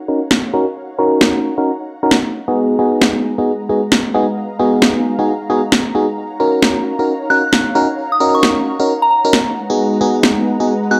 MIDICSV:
0, 0, Header, 1, 5, 480
1, 0, Start_track
1, 0, Key_signature, -6, "minor"
1, 0, Tempo, 451128
1, 809, Time_signature, 4, 2, 24, 8
1, 11702, End_track
2, 0, Start_track
2, 0, Title_t, "Synth bell"
2, 0, Program_c, 0, 98
2, 7768, Note_on_c, 0, 90, 85
2, 7965, Note_off_c, 0, 90, 0
2, 8640, Note_on_c, 0, 87, 82
2, 8808, Note_off_c, 0, 87, 0
2, 8880, Note_on_c, 0, 85, 84
2, 8937, Note_off_c, 0, 85, 0
2, 8968, Note_on_c, 0, 85, 69
2, 9065, Note_off_c, 0, 85, 0
2, 9600, Note_on_c, 0, 82, 81
2, 9657, Note_off_c, 0, 82, 0
2, 9689, Note_on_c, 0, 82, 71
2, 9785, Note_off_c, 0, 82, 0
2, 11609, Note_on_c, 0, 90, 85
2, 11702, Note_off_c, 0, 90, 0
2, 11702, End_track
3, 0, Start_track
3, 0, Title_t, "Analog synth pad"
3, 0, Program_c, 1, 89
3, 0, Note_on_c, 1, 63, 77
3, 0, Note_on_c, 1, 73, 71
3, 0, Note_on_c, 1, 77, 73
3, 0, Note_on_c, 1, 78, 69
3, 0, Note_on_c, 1, 82, 88
3, 2453, Note_off_c, 1, 63, 0
3, 2453, Note_off_c, 1, 73, 0
3, 2453, Note_off_c, 1, 77, 0
3, 2489, Note_on_c, 1, 56, 77
3, 2489, Note_on_c, 1, 71, 72
3, 2489, Note_on_c, 1, 75, 74
3, 4366, Note_off_c, 1, 78, 0
3, 4410, Note_on_c, 1, 77, 71
3, 6528, Note_off_c, 1, 56, 0
3, 6528, Note_off_c, 1, 71, 0
3, 6528, Note_off_c, 1, 75, 0
3, 6547, Note_off_c, 1, 77, 0
3, 6569, Note_on_c, 1, 73, 72
3, 6569, Note_on_c, 1, 77, 73
3, 6569, Note_on_c, 1, 78, 71
3, 6570, Note_on_c, 1, 63, 78
3, 10133, Note_off_c, 1, 63, 0
3, 10133, Note_off_c, 1, 73, 0
3, 10133, Note_off_c, 1, 77, 0
3, 10168, Note_on_c, 1, 75, 73
3, 10169, Note_on_c, 1, 71, 72
3, 10170, Note_on_c, 1, 56, 80
3, 11702, Note_off_c, 1, 56, 0
3, 11702, Note_off_c, 1, 71, 0
3, 11702, Note_off_c, 1, 75, 0
3, 11702, Note_off_c, 1, 78, 0
3, 11702, Note_off_c, 1, 82, 0
3, 11702, End_track
4, 0, Start_track
4, 0, Title_t, "FM electric piano"
4, 0, Program_c, 2, 5
4, 88, Note_on_c, 2, 61, 66
4, 88, Note_on_c, 2, 63, 59
4, 89, Note_on_c, 2, 66, 60
4, 89, Note_on_c, 2, 70, 72
4, 216, Note_off_c, 2, 61, 0
4, 216, Note_off_c, 2, 63, 0
4, 216, Note_off_c, 2, 66, 0
4, 216, Note_off_c, 2, 70, 0
4, 569, Note_on_c, 2, 61, 85
4, 569, Note_on_c, 2, 63, 79
4, 569, Note_on_c, 2, 66, 79
4, 569, Note_on_c, 2, 70, 94
4, 696, Note_off_c, 2, 61, 0
4, 696, Note_off_c, 2, 63, 0
4, 696, Note_off_c, 2, 66, 0
4, 696, Note_off_c, 2, 70, 0
4, 1048, Note_on_c, 2, 61, 84
4, 1048, Note_on_c, 2, 63, 77
4, 1048, Note_on_c, 2, 66, 78
4, 1048, Note_on_c, 2, 70, 91
4, 1643, Note_off_c, 2, 61, 0
4, 1643, Note_off_c, 2, 63, 0
4, 1643, Note_off_c, 2, 66, 0
4, 1643, Note_off_c, 2, 70, 0
4, 1678, Note_on_c, 2, 61, 74
4, 1678, Note_on_c, 2, 63, 67
4, 1678, Note_on_c, 2, 70, 81
4, 1679, Note_on_c, 2, 66, 67
4, 1822, Note_off_c, 2, 61, 0
4, 1822, Note_off_c, 2, 63, 0
4, 1822, Note_off_c, 2, 66, 0
4, 1822, Note_off_c, 2, 70, 0
4, 2159, Note_on_c, 2, 61, 80
4, 2159, Note_on_c, 2, 63, 72
4, 2159, Note_on_c, 2, 66, 73
4, 2159, Note_on_c, 2, 70, 89
4, 2302, Note_off_c, 2, 61, 0
4, 2302, Note_off_c, 2, 63, 0
4, 2302, Note_off_c, 2, 66, 0
4, 2302, Note_off_c, 2, 70, 0
4, 2638, Note_on_c, 2, 59, 71
4, 2638, Note_on_c, 2, 63, 66
4, 2638, Note_on_c, 2, 66, 66
4, 2639, Note_on_c, 2, 68, 78
4, 2947, Note_off_c, 2, 59, 0
4, 2947, Note_off_c, 2, 63, 0
4, 2947, Note_off_c, 2, 66, 0
4, 2947, Note_off_c, 2, 68, 0
4, 2968, Note_on_c, 2, 59, 76
4, 2968, Note_on_c, 2, 63, 69
4, 2968, Note_on_c, 2, 66, 69
4, 2968, Note_on_c, 2, 68, 85
4, 3563, Note_off_c, 2, 59, 0
4, 3563, Note_off_c, 2, 63, 0
4, 3563, Note_off_c, 2, 66, 0
4, 3563, Note_off_c, 2, 68, 0
4, 3599, Note_on_c, 2, 59, 66
4, 3599, Note_on_c, 2, 63, 64
4, 3599, Note_on_c, 2, 66, 62
4, 3599, Note_on_c, 2, 68, 72
4, 3742, Note_off_c, 2, 66, 0
4, 3743, Note_off_c, 2, 59, 0
4, 3743, Note_off_c, 2, 63, 0
4, 3743, Note_off_c, 2, 68, 0
4, 3930, Note_on_c, 2, 59, 67
4, 3930, Note_on_c, 2, 63, 62
4, 3930, Note_on_c, 2, 66, 61
4, 3930, Note_on_c, 2, 68, 75
4, 4057, Note_off_c, 2, 59, 0
4, 4057, Note_off_c, 2, 63, 0
4, 4057, Note_off_c, 2, 66, 0
4, 4057, Note_off_c, 2, 68, 0
4, 4409, Note_on_c, 2, 59, 87
4, 4409, Note_on_c, 2, 63, 79
4, 4409, Note_on_c, 2, 66, 81
4, 4409, Note_on_c, 2, 68, 96
4, 4536, Note_off_c, 2, 59, 0
4, 4536, Note_off_c, 2, 63, 0
4, 4536, Note_off_c, 2, 66, 0
4, 4536, Note_off_c, 2, 68, 0
4, 4888, Note_on_c, 2, 63, 77
4, 4888, Note_on_c, 2, 66, 75
4, 4888, Note_on_c, 2, 68, 93
4, 4889, Note_on_c, 2, 59, 83
4, 5483, Note_off_c, 2, 59, 0
4, 5483, Note_off_c, 2, 63, 0
4, 5483, Note_off_c, 2, 66, 0
4, 5483, Note_off_c, 2, 68, 0
4, 5519, Note_on_c, 2, 59, 72
4, 5519, Note_on_c, 2, 63, 67
4, 5519, Note_on_c, 2, 66, 68
4, 5519, Note_on_c, 2, 68, 80
4, 5662, Note_off_c, 2, 59, 0
4, 5662, Note_off_c, 2, 63, 0
4, 5662, Note_off_c, 2, 66, 0
4, 5662, Note_off_c, 2, 68, 0
4, 5849, Note_on_c, 2, 59, 84
4, 5849, Note_on_c, 2, 63, 77
4, 5849, Note_on_c, 2, 66, 78
4, 5849, Note_on_c, 2, 68, 92
4, 5976, Note_off_c, 2, 59, 0
4, 5976, Note_off_c, 2, 63, 0
4, 5976, Note_off_c, 2, 66, 0
4, 5976, Note_off_c, 2, 68, 0
4, 6328, Note_on_c, 2, 59, 71
4, 6328, Note_on_c, 2, 63, 66
4, 6328, Note_on_c, 2, 66, 66
4, 6328, Note_on_c, 2, 68, 77
4, 6456, Note_off_c, 2, 59, 0
4, 6456, Note_off_c, 2, 63, 0
4, 6456, Note_off_c, 2, 66, 0
4, 6456, Note_off_c, 2, 68, 0
4, 6808, Note_on_c, 2, 61, 78
4, 6808, Note_on_c, 2, 63, 68
4, 6808, Note_on_c, 2, 66, 71
4, 6808, Note_on_c, 2, 70, 83
4, 7402, Note_off_c, 2, 63, 0
4, 7403, Note_off_c, 2, 61, 0
4, 7403, Note_off_c, 2, 66, 0
4, 7403, Note_off_c, 2, 70, 0
4, 7438, Note_on_c, 2, 63, 63
4, 7439, Note_on_c, 2, 61, 66
4, 7439, Note_on_c, 2, 66, 60
4, 7439, Note_on_c, 2, 70, 75
4, 7582, Note_off_c, 2, 61, 0
4, 7582, Note_off_c, 2, 63, 0
4, 7582, Note_off_c, 2, 66, 0
4, 7582, Note_off_c, 2, 70, 0
4, 7768, Note_on_c, 2, 61, 66
4, 7768, Note_on_c, 2, 63, 62
4, 7768, Note_on_c, 2, 66, 60
4, 7768, Note_on_c, 2, 70, 73
4, 7896, Note_off_c, 2, 61, 0
4, 7896, Note_off_c, 2, 63, 0
4, 7896, Note_off_c, 2, 66, 0
4, 7896, Note_off_c, 2, 70, 0
4, 8249, Note_on_c, 2, 61, 88
4, 8249, Note_on_c, 2, 63, 82
4, 8249, Note_on_c, 2, 66, 80
4, 8249, Note_on_c, 2, 70, 97
4, 8376, Note_off_c, 2, 61, 0
4, 8376, Note_off_c, 2, 63, 0
4, 8376, Note_off_c, 2, 66, 0
4, 8376, Note_off_c, 2, 70, 0
4, 8728, Note_on_c, 2, 61, 87
4, 8728, Note_on_c, 2, 63, 76
4, 8728, Note_on_c, 2, 66, 78
4, 8728, Note_on_c, 2, 70, 96
4, 9322, Note_off_c, 2, 63, 0
4, 9323, Note_off_c, 2, 61, 0
4, 9323, Note_off_c, 2, 66, 0
4, 9323, Note_off_c, 2, 70, 0
4, 9358, Note_on_c, 2, 66, 69
4, 9359, Note_on_c, 2, 61, 74
4, 9359, Note_on_c, 2, 63, 68
4, 9359, Note_on_c, 2, 70, 83
4, 9502, Note_off_c, 2, 61, 0
4, 9502, Note_off_c, 2, 63, 0
4, 9502, Note_off_c, 2, 66, 0
4, 9502, Note_off_c, 2, 70, 0
4, 9838, Note_on_c, 2, 63, 74
4, 9839, Note_on_c, 2, 61, 83
4, 9839, Note_on_c, 2, 66, 74
4, 9839, Note_on_c, 2, 70, 87
4, 9982, Note_off_c, 2, 61, 0
4, 9982, Note_off_c, 2, 63, 0
4, 9982, Note_off_c, 2, 66, 0
4, 9982, Note_off_c, 2, 70, 0
4, 10319, Note_on_c, 2, 59, 72
4, 10319, Note_on_c, 2, 63, 64
4, 10319, Note_on_c, 2, 66, 66
4, 10319, Note_on_c, 2, 68, 79
4, 10627, Note_off_c, 2, 59, 0
4, 10627, Note_off_c, 2, 63, 0
4, 10627, Note_off_c, 2, 66, 0
4, 10627, Note_off_c, 2, 68, 0
4, 10648, Note_on_c, 2, 59, 79
4, 10648, Note_on_c, 2, 63, 71
4, 10648, Note_on_c, 2, 66, 70
4, 10648, Note_on_c, 2, 68, 87
4, 11242, Note_off_c, 2, 68, 0
4, 11243, Note_off_c, 2, 59, 0
4, 11243, Note_off_c, 2, 63, 0
4, 11243, Note_off_c, 2, 66, 0
4, 11279, Note_on_c, 2, 59, 68
4, 11279, Note_on_c, 2, 63, 61
4, 11279, Note_on_c, 2, 66, 62
4, 11279, Note_on_c, 2, 68, 76
4, 11422, Note_off_c, 2, 59, 0
4, 11422, Note_off_c, 2, 63, 0
4, 11422, Note_off_c, 2, 66, 0
4, 11422, Note_off_c, 2, 68, 0
4, 11608, Note_on_c, 2, 59, 69
4, 11608, Note_on_c, 2, 63, 63
4, 11608, Note_on_c, 2, 66, 63
4, 11608, Note_on_c, 2, 68, 74
4, 11702, Note_off_c, 2, 59, 0
4, 11702, Note_off_c, 2, 63, 0
4, 11702, Note_off_c, 2, 66, 0
4, 11702, Note_off_c, 2, 68, 0
4, 11702, End_track
5, 0, Start_track
5, 0, Title_t, "Drums"
5, 328, Note_on_c, 9, 38, 108
5, 434, Note_off_c, 9, 38, 0
5, 1288, Note_on_c, 9, 38, 112
5, 1394, Note_off_c, 9, 38, 0
5, 2248, Note_on_c, 9, 38, 113
5, 2355, Note_off_c, 9, 38, 0
5, 3208, Note_on_c, 9, 38, 114
5, 3314, Note_off_c, 9, 38, 0
5, 4168, Note_on_c, 9, 38, 115
5, 4275, Note_off_c, 9, 38, 0
5, 5128, Note_on_c, 9, 38, 111
5, 5235, Note_off_c, 9, 38, 0
5, 6087, Note_on_c, 9, 38, 115
5, 6194, Note_off_c, 9, 38, 0
5, 7048, Note_on_c, 9, 38, 109
5, 7155, Note_off_c, 9, 38, 0
5, 8009, Note_on_c, 9, 38, 110
5, 8115, Note_off_c, 9, 38, 0
5, 8969, Note_on_c, 9, 38, 106
5, 9075, Note_off_c, 9, 38, 0
5, 9929, Note_on_c, 9, 38, 110
5, 10035, Note_off_c, 9, 38, 0
5, 10888, Note_on_c, 9, 38, 105
5, 10995, Note_off_c, 9, 38, 0
5, 11702, End_track
0, 0, End_of_file